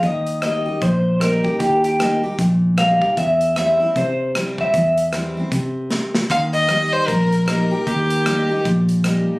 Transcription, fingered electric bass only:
X:1
M:4/4
L:1/8
Q:"Swing" 1/4=153
K:Ebmix
V:1 name="Fingered electric bass" clef=bass
E,,4 B,,,4 | E,,4 B,,,4 | =E,,4 C,4 | =E,,4 C,4 |
E,,4 B,,,4 | E,,4 B,,,4 |]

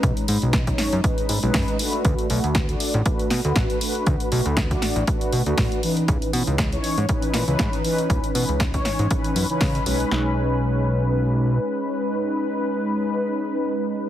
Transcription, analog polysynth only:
X:1
M:4/4
L:1/16
Q:"Swing 16ths" 1/4=119
K:B
V:1 name="Analog polysynth"
[G,CDB]2 [G,CDB]3 [G,CDc]3 [G,CDB]3 [G,CDB]3 [=A,=DFB]2- | [=A,=DFB]2 [A,DFB]3 [A,DF=d]3 [A,DFB]3 [A,DFB]3 [A,DFB]2- | [=A,=DFB]2 [A,DFB]3 [A,DF=d]3 [A,DFB]3 [A,DFB]3 [E,C^DB]2- | [E,CDB]2 [E,CDB]3 [E,CDc]3 [E,CDB]3 [E,CDB]3 [E,CDB]2- |
[E,CDB]2 [E,CDB]3 [E,CDc]3 [E,CDB]3 [E,CDB]3 [G,CDB]2 | [G,CDB]16- | [G,CDB]16 |]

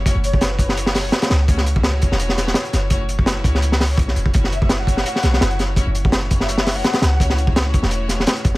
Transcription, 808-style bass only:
X:1
M:4/4
L:1/16
Q:"Swing 16ths" 1/4=168
K:F#m
V:1 name="808-style bass" clef=bass
F,,, F,,,8- F,,,3 z2 C,,2- | C,,6- C,, E,,,4- E,,, z2 F,,,2- | F,,,6 C,,6 B,,,2 E,,,2 | F,,,8 z2 B,,,2 F,,,4- |
F,,, F,,,8- F,,,3 z2 C,,2- | C,,6- C,, E,,,4- E,,, z2 F,,,2 |]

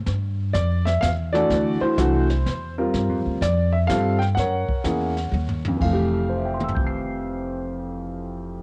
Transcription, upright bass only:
X:1
M:3/4
L:1/8
Q:"Swing" 1/4=125
K:F
V:1 name="Upright bass" clef=bass
G,,2 F,,2 E,,2 | D,, z C,,2 E,,2 | (3G,, F,, D,, F,,2 G,,2 | _G,, z _F,,2 _E,,2 |
F,,,6- | F,,,6 |]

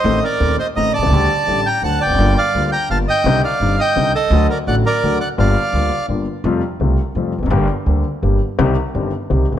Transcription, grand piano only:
X:1
M:3/4
L:1/16
Q:1/4=169
K:Gm
V:1 name="Grand piano" clef=bass
[A,,,A,,E,A,CA]2 z2 [E,,,E,,E,A,CA]2 z2 [A,,,A,,E,A,CA]2 z/2 =B,,,/2 C,,/2 ^C,,/2 | [D,,D,G,A,G]2 z2 [A,,,A,,D,G,A,G]2 z2 [D,,D,^F,A,^F]2 z/2 =E,,/2 =F,,/2 ^F,,/2 | [G,,,G,,D,G,B,F]2 z2 [D,,D,G,B,F]2 z2 [G,,,G,,D,G,B,F]2 z2 | [C,,C,D,G,CE]2 z2 [G,,,G,,D,G,CE]2 z2 [C,,C,D,G,CE]2 z2 |
[D,,D,^F,A,^F]2 z2 [A,,,A,,D,F,A,F]2 z2 [D,,D,F,A,F]2 z2 | [G,,,G,,D,G,B,F]2 z2 [D,,D,G,B,F]2 z2 [G,,,G,,D,G,B,F]2 z2 | [F,,C,F,G,A,F]2 z2 [C,,C,G,A,F]2 z2 [F,,C,F,G,A,F]2 z/2 =E,,/2 F,,/2 ^F,,/2 | [G,,,G,,D,G,B,G]2 z2 [D,,D,G,B,G]2 z2 [G,,,G,,D,G,B,G]2 z2 |
[C,,C,E,G,CG]2 z2 [G,,,G,,E,G,CG]2 z2 [C,,C,E,G,CG]2 z/2 =B,,,/2 z |]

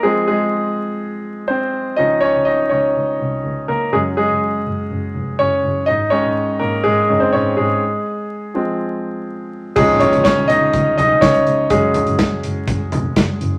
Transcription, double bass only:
X:1
M:4/4
L:1/16
Q:1/4=123
K:Db
V:1 name="Double bass" clef=bass
z16 | D,,2 z D,,2 z D,,2 D,,2 C,,2 D,,2 D,,2 | G,,,2 z G,,,2 z G,,,2 G,,,2 F,,,2 G,,,2 G,,,2 | A,,,2 z A,,,2 z A,,,2 A,,,2 G,,,2 A,,,2 A,,,2 |
z16 | D,,2 z D,,2 z D,,2 D,,2 C,,2 D,,2 D,,2 | G,,,2 z G,,,2 z G,,,2 G,,,2 F,,,2 G,,,2 G,,,2 |]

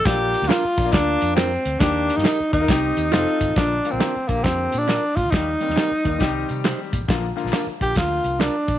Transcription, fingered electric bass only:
X:1
M:4/4
L:1/16
Q:"Swing" 1/4=136
K:Bb
V:1 name="Fingered electric bass" clef=bass
B,,,3 D,, z2 B,,,2 D,,2 F,,4 D,,2 | E,,3 G,, z2 E,,2 C,,2 E,,2 F,,, z G,,, A,,, | B,,,2 z B,,, z2 B,,,2 F,,2 B,,3 z A,, D,, | E,,2 z E,, z2 E,,2 C,,2 C,3 z B,, A,,, |
B,,,2 z B,,, z2 B,,,2 D,,2 C,,3 z B,,, D,, |]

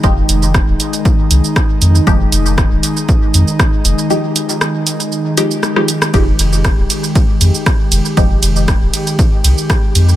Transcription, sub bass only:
X:1
M:4/4
L:1/16
Q:"Swing 16ths" 1/4=118
K:Fm
V:1 name="Sub bass" clef=bass
F,,, z F,,,3 E,,, z4 C,, z3 F,, z | F,,, z F,,,3 E,,, z4 F,, z3 F,,, z | z16 | F,,, z F,,,3 E,,, z4 F,, z3 F,,, z |
F,,, z F,,,3 E,,, z4 C,, z3 F,, z |]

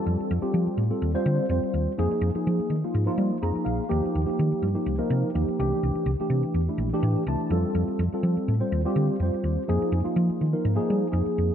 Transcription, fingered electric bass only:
X:1
M:4/4
L:1/16
Q:"Swing 16ths" 1/4=125
K:Fdor
V:1 name="Fingered electric bass" clef=bass
F,, z F,, z F, z =A,, z E,, z D, z F,, z E,, z | F,, z F,, z F, z E, z A,, z G, z F,, z B,,, z | E,, z E,, z E, z G,, z C,, z C, z E,, z C,, z | C,, z C,, z C, z =E,, z B,,, z =A,, z C,, z F,, z |
F,, z F,, z F, z =A,, z E,, z D, z F,, z E,, z | F,, z F,, z F, z E, z A,, z G, z F,, z F,, z |]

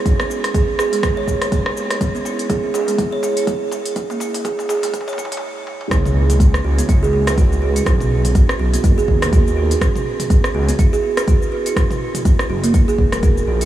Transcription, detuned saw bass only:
X:1
M:4/4
L:1/8
Q:"Swing 16ths" 1/4=123
K:C#dor
V:1 name="Detuned saw bass" clef=bass
B,,,2 z B,,, F,,, D,,3 | z3 C,, z4 | z3 F,,, z4 | C,,3 C,, C,,4 |
B,,,2 z B,,, F,,, D,,3 | z3 C,, z4 | z3 F,,, z E,,,2 A,,, |]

